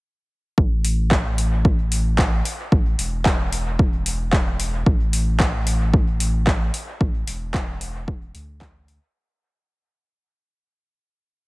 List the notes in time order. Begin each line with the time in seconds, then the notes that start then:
0.58 A1, kick
0.85 open hi-hat
1.11 kick, clap
1.38 open hi-hat
1.65 kick
1.92 open hi-hat
2.19 kick, clap
2.45 open hi-hat
2.72 A1, kick
2.99 E1, open hi-hat
3.26 kick, clap
3.52 open hi-hat
3.79 kick
4.06 open hi-hat
4.33 kick, clap
4.60 open hi-hat
4.86 A1, kick
5.13 open hi-hat
5.40 kick, clap
5.67 open hi-hat
5.94 kick
6.20 open hi-hat
6.47 kick, clap
6.74 open hi-hat
7.01 A1, kick
7.27 E1, open hi-hat
7.54 kick, clap
7.81 open hi-hat
8.08 kick
8.35 D2, open hi-hat
8.61 kick, clap
8.88 open hi-hat